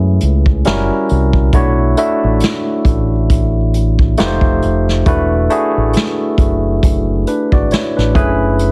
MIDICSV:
0, 0, Header, 1, 4, 480
1, 0, Start_track
1, 0, Tempo, 882353
1, 833, Time_signature, 4, 2, 24, 8
1, 4743, End_track
2, 0, Start_track
2, 0, Title_t, "Tine electric piano"
2, 0, Program_c, 0, 4
2, 0, Control_c, 0, 64, 127
2, 0, Note_on_c, 0, 56, 64
2, 0, Note_on_c, 0, 57, 82
2, 0, Note_on_c, 0, 61, 77
2, 0, Note_on_c, 0, 64, 76
2, 0, Note_on_c, 0, 68, 75
2, 0, Note_on_c, 0, 71, 88
2, 0, Note_on_c, 0, 73, 97
2, 355, Note_on_c, 0, 55, 90
2, 358, Note_off_c, 0, 61, 0
2, 358, Control_c, 0, 64, 0
2, 358, Note_on_c, 0, 61, 83
2, 360, Note_off_c, 0, 57, 0
2, 360, Note_off_c, 0, 64, 0
2, 360, Note_off_c, 0, 73, 0
2, 360, Note_on_c, 0, 64, 82
2, 362, Note_off_c, 0, 56, 0
2, 362, Note_off_c, 0, 68, 0
2, 362, Note_on_c, 0, 66, 83
2, 363, Note_off_c, 0, 71, 0
2, 364, Note_on_c, 0, 70, 98
2, 463, Control_c, 0, 64, 127
2, 750, Note_off_c, 0, 55, 0
2, 751, Note_off_c, 0, 61, 0
2, 753, Note_off_c, 0, 64, 0
2, 754, Note_off_c, 0, 66, 0
2, 755, Note_off_c, 0, 70, 0
2, 834, Note_on_c, 0, 57, 84
2, 836, Note_on_c, 0, 62, 77
2, 839, Note_on_c, 0, 64, 76
2, 840, Control_c, 0, 64, 0
2, 841, Note_on_c, 0, 66, 77
2, 843, Note_on_c, 0, 73, 95
2, 941, Control_c, 0, 64, 127
2, 1024, Note_off_c, 0, 57, 0
2, 1026, Note_off_c, 0, 62, 0
2, 1027, Note_off_c, 0, 64, 0
2, 1028, Note_off_c, 0, 66, 0
2, 1029, Note_off_c, 0, 73, 0
2, 1073, Note_on_c, 0, 57, 83
2, 1075, Note_on_c, 0, 62, 80
2, 1077, Note_on_c, 0, 64, 76
2, 1079, Note_on_c, 0, 66, 77
2, 1082, Note_on_c, 0, 76, 91
2, 1811, Note_off_c, 0, 57, 0
2, 1812, Note_off_c, 0, 62, 0
2, 1813, Note_off_c, 0, 64, 0
2, 1814, Note_off_c, 0, 66, 0
2, 1815, Note_off_c, 0, 76, 0
2, 2274, Note_on_c, 0, 57, 92
2, 2276, Note_on_c, 0, 63, 83
2, 2278, Note_on_c, 0, 65, 84
2, 2280, Control_c, 0, 64, 0
2, 2280, Note_on_c, 0, 67, 80
2, 2282, Note_on_c, 0, 71, 78
2, 2317, Note_off_c, 0, 71, 0
2, 2318, Note_on_c, 0, 72, 99
2, 2364, Control_c, 0, 64, 127
2, 2670, Note_off_c, 0, 57, 0
2, 2671, Note_off_c, 0, 63, 0
2, 2672, Note_off_c, 0, 65, 0
2, 2672, Note_off_c, 0, 67, 0
2, 2692, Note_off_c, 0, 72, 0
2, 2753, Note_on_c, 0, 57, 87
2, 2755, Note_on_c, 0, 62, 79
2, 2758, Note_on_c, 0, 64, 80
2, 2761, Control_c, 0, 64, 0
2, 2761, Note_on_c, 0, 66, 80
2, 2763, Note_on_c, 0, 71, 96
2, 2851, Control_c, 0, 64, 127
2, 2944, Note_off_c, 0, 57, 0
2, 2945, Note_off_c, 0, 62, 0
2, 2946, Note_off_c, 0, 64, 0
2, 2948, Note_off_c, 0, 66, 0
2, 2949, Note_off_c, 0, 71, 0
2, 2992, Note_on_c, 0, 57, 88
2, 2993, Note_on_c, 0, 62, 74
2, 2997, Note_on_c, 0, 64, 80
2, 3000, Note_on_c, 0, 66, 76
2, 3002, Note_on_c, 0, 68, 93
2, 3730, Note_off_c, 0, 57, 0
2, 3731, Note_off_c, 0, 62, 0
2, 3733, Note_off_c, 0, 64, 0
2, 3734, Note_off_c, 0, 66, 0
2, 3735, Note_off_c, 0, 68, 0
2, 3959, Note_on_c, 0, 71, 62
2, 3963, Note_on_c, 0, 62, 51
2, 4084, Note_off_c, 0, 71, 0
2, 4087, Note_off_c, 0, 62, 0
2, 4096, Note_on_c, 0, 74, 67
2, 4100, Note_on_c, 0, 66, 58
2, 4192, Note_off_c, 0, 74, 0
2, 4194, Note_off_c, 0, 66, 0
2, 4200, Note_on_c, 0, 73, 72
2, 4202, Note_on_c, 0, 64, 59
2, 4325, Note_off_c, 0, 73, 0
2, 4326, Note_off_c, 0, 64, 0
2, 4334, Note_on_c, 0, 71, 61
2, 4337, Note_on_c, 0, 62, 52
2, 4430, Note_on_c, 0, 57, 88
2, 4432, Note_on_c, 0, 61, 82
2, 4433, Note_off_c, 0, 71, 0
2, 4435, Note_on_c, 0, 64, 80
2, 4436, Note_on_c, 0, 68, 84
2, 4439, Control_c, 0, 64, 0
2, 4440, Note_on_c, 0, 71, 97
2, 4530, Control_c, 0, 64, 127
2, 4561, Note_off_c, 0, 62, 0
2, 4743, Note_off_c, 0, 57, 0
2, 4743, Note_off_c, 0, 61, 0
2, 4743, Note_off_c, 0, 64, 0
2, 4743, Note_off_c, 0, 68, 0
2, 4743, Note_off_c, 0, 71, 0
2, 4743, End_track
3, 0, Start_track
3, 0, Title_t, "Fingered electric bass"
3, 0, Program_c, 1, 33
3, 0, Note_on_c, 1, 42, 100
3, 95, Note_off_c, 1, 42, 0
3, 123, Note_on_c, 1, 37, 90
3, 336, Note_off_c, 1, 37, 0
3, 363, Note_on_c, 1, 30, 97
3, 481, Note_off_c, 1, 30, 0
3, 604, Note_on_c, 1, 36, 92
3, 817, Note_off_c, 1, 36, 0
3, 838, Note_on_c, 1, 35, 91
3, 1054, Note_off_c, 1, 35, 0
3, 1218, Note_on_c, 1, 33, 89
3, 1309, Note_off_c, 1, 33, 0
3, 1555, Note_on_c, 1, 33, 91
3, 2252, Note_off_c, 1, 33, 0
3, 2284, Note_on_c, 1, 29, 90
3, 2402, Note_off_c, 1, 29, 0
3, 2406, Note_on_c, 1, 29, 86
3, 2502, Note_off_c, 1, 29, 0
3, 2523, Note_on_c, 1, 29, 82
3, 2736, Note_off_c, 1, 29, 0
3, 2758, Note_on_c, 1, 28, 88
3, 2974, Note_off_c, 1, 28, 0
3, 3141, Note_on_c, 1, 33, 89
3, 3230, Note_off_c, 1, 33, 0
3, 3476, Note_on_c, 1, 30, 74
3, 3693, Note_off_c, 1, 30, 0
3, 3722, Note_on_c, 1, 30, 90
3, 3936, Note_off_c, 1, 30, 0
3, 4097, Note_on_c, 1, 32, 79
3, 4188, Note_off_c, 1, 32, 0
3, 4342, Note_on_c, 1, 33, 84
3, 4430, Note_off_c, 1, 33, 0
3, 4441, Note_on_c, 1, 30, 99
3, 4743, Note_off_c, 1, 30, 0
3, 4743, End_track
4, 0, Start_track
4, 0, Title_t, "Drums"
4, 111, Note_on_c, 9, 42, 69
4, 166, Note_off_c, 9, 42, 0
4, 249, Note_on_c, 9, 36, 80
4, 304, Note_off_c, 9, 36, 0
4, 351, Note_on_c, 9, 42, 71
4, 365, Note_on_c, 9, 38, 107
4, 405, Note_off_c, 9, 42, 0
4, 420, Note_off_c, 9, 38, 0
4, 594, Note_on_c, 9, 42, 56
4, 648, Note_off_c, 9, 42, 0
4, 726, Note_on_c, 9, 36, 90
4, 780, Note_off_c, 9, 36, 0
4, 831, Note_on_c, 9, 42, 82
4, 832, Note_on_c, 9, 36, 115
4, 885, Note_off_c, 9, 42, 0
4, 886, Note_off_c, 9, 36, 0
4, 1071, Note_on_c, 9, 42, 75
4, 1125, Note_off_c, 9, 42, 0
4, 1306, Note_on_c, 9, 42, 82
4, 1326, Note_on_c, 9, 38, 113
4, 1361, Note_off_c, 9, 42, 0
4, 1380, Note_off_c, 9, 38, 0
4, 1549, Note_on_c, 9, 36, 84
4, 1551, Note_on_c, 9, 42, 71
4, 1604, Note_off_c, 9, 36, 0
4, 1606, Note_off_c, 9, 42, 0
4, 1794, Note_on_c, 9, 36, 84
4, 1795, Note_on_c, 9, 42, 85
4, 1849, Note_off_c, 9, 36, 0
4, 1849, Note_off_c, 9, 42, 0
4, 2033, Note_on_c, 9, 42, 74
4, 2088, Note_off_c, 9, 42, 0
4, 2170, Note_on_c, 9, 36, 77
4, 2224, Note_off_c, 9, 36, 0
4, 2270, Note_on_c, 9, 42, 74
4, 2284, Note_on_c, 9, 38, 103
4, 2324, Note_off_c, 9, 42, 0
4, 2339, Note_off_c, 9, 38, 0
4, 2400, Note_on_c, 9, 36, 92
4, 2455, Note_off_c, 9, 36, 0
4, 2514, Note_on_c, 9, 42, 55
4, 2569, Note_off_c, 9, 42, 0
4, 2659, Note_on_c, 9, 38, 33
4, 2714, Note_off_c, 9, 38, 0
4, 2753, Note_on_c, 9, 36, 111
4, 2753, Note_on_c, 9, 42, 83
4, 2808, Note_off_c, 9, 36, 0
4, 2808, Note_off_c, 9, 42, 0
4, 2993, Note_on_c, 9, 42, 75
4, 3047, Note_off_c, 9, 42, 0
4, 3227, Note_on_c, 9, 42, 84
4, 3246, Note_on_c, 9, 38, 108
4, 3281, Note_off_c, 9, 42, 0
4, 3301, Note_off_c, 9, 38, 0
4, 3470, Note_on_c, 9, 36, 86
4, 3472, Note_on_c, 9, 42, 69
4, 3525, Note_off_c, 9, 36, 0
4, 3527, Note_off_c, 9, 42, 0
4, 3715, Note_on_c, 9, 36, 91
4, 3717, Note_on_c, 9, 42, 85
4, 3770, Note_off_c, 9, 36, 0
4, 3771, Note_off_c, 9, 42, 0
4, 3954, Note_on_c, 9, 42, 74
4, 4009, Note_off_c, 9, 42, 0
4, 4091, Note_on_c, 9, 36, 79
4, 4146, Note_off_c, 9, 36, 0
4, 4193, Note_on_c, 9, 42, 72
4, 4207, Note_on_c, 9, 38, 102
4, 4247, Note_off_c, 9, 42, 0
4, 4262, Note_off_c, 9, 38, 0
4, 4344, Note_on_c, 9, 38, 36
4, 4398, Note_off_c, 9, 38, 0
4, 4435, Note_on_c, 9, 36, 100
4, 4437, Note_on_c, 9, 42, 55
4, 4489, Note_off_c, 9, 36, 0
4, 4492, Note_off_c, 9, 42, 0
4, 4673, Note_on_c, 9, 42, 76
4, 4728, Note_off_c, 9, 42, 0
4, 4743, End_track
0, 0, End_of_file